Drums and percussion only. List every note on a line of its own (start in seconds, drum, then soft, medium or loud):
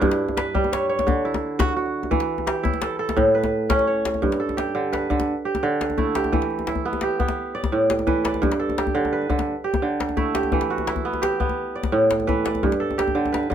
0.02 djembe bass medium
0.11 djembe slap medium
0.28 djembe slap soft
0.28 djembe tone medium
0.37 djembe slap medium
0.55 djembe slap soft
0.55 djembe bass medium
0.64 djembe tone medium
0.73 djembe slap medium
0.99 djembe slap medium
0.99 djembe tone medium
1.08 djembe bass medium
1.34 djembe slap medium
1.34 djembe tone medium
1.60 djembe slap medium
1.60 djembe bass medium
1.68 djembe tone medium
1.86 djembe slap soft
2.03 djembe tone medium
2.12 djembe bass medium
2.20 djembe slap medium
2.38 djembe tone medium
2.47 djembe slap medium
2.65 djembe bass medium
2.73 djembe tone medium
2.82 djembe slap medium
3.09 djembe slap medium
3.09 djembe tone medium
3.17 djembe bass medium
3.44 djembe slap medium
3.44 djembe tone medium
3.70 djembe slap medium
3.70 djembe bass medium
3.79 djembe tone medium
4.05 djembe slap medium
4.14 djembe slap soft
4.14 djembe tone medium
4.23 djembe bass medium
4.32 djembe slap soft
4.41 djembe slap soft
4.49 djembe tone soft
4.58 djembe slap medium
4.93 djembe slap medium
5.02 djembe slap soft
5.11 djembe slap soft
5.11 djembe bass medium
5.20 djembe slap soft
5.20 djembe tone soft
5.55 djembe slap soft
5.55 djembe tone soft
5.81 djembe slap medium
5.90 djembe tone soft
5.98 djembe bass medium
6.15 djembe slap medium
6.24 djembe tone soft
6.33 djembe bass medium
6.42 djembe slap soft
6.50 djembe slap soft
6.59 djembe tone soft
6.67 djembe slap medium
6.75 djembe bass medium
6.93 djembe tone medium
7.01 djembe slap medium
7.11 djembe slap soft
7.20 djembe slap soft
7.20 djembe bass medium
7.28 djembe slap soft
7.28 djembe tone medium
7.64 djembe slap medium
7.64 djembe tone soft
7.64 djembe bass medium
7.90 djembe slap medium
7.99 djembe tone soft
8.07 djembe bass medium
8.25 djembe slap medium
8.34 djembe tone medium
8.43 djembe bass medium
8.52 djembe slap medium
8.60 djembe slap soft
8.69 djembe tone medium
8.78 djembe slap medium
8.87 djembe bass medium
9.05 djembe tone medium
9.22 djembe slap soft
9.30 djembe slap soft
9.30 djembe bass medium
9.39 djembe slap soft
9.39 djembe tone medium
9.74 djembe slap soft
9.74 djembe tone soft
9.74 djembe bass medium
10.00 djembe slap medium
10.09 djembe tone soft
10.17 djembe bass medium
10.35 djembe slap medium
10.43 djembe tone medium
10.52 djembe bass medium
10.61 djembe slap medium
10.78 djembe tone medium
10.87 djembe slap medium
10.96 djembe bass medium
11.13 djembe tone medium
11.23 djembe slap medium
11.32 djembe slap soft
11.40 djembe slap soft
11.40 djembe bass medium
11.49 djembe tone soft
11.83 djembe slap soft
11.83 djembe tone soft
11.83 djembe bass soft
12.02 djembe slap soft
12.11 djembe slap medium
12.20 djembe tone soft
12.29 djembe bass medium
12.46 djembe slap medium
12.55 djembe slap soft
12.55 djembe tone medium
12.63 djembe bass medium
12.72 djembe slap soft
12.81 djembe slap soft
12.90 djembe tone soft
12.99 djembe slap medium
13.08 djembe bass medium
13.25 djembe tone medium
13.34 djembe slap medium
13.43 djembe slap soft
13.52 djembe slap soft
13.52 djembe bass medium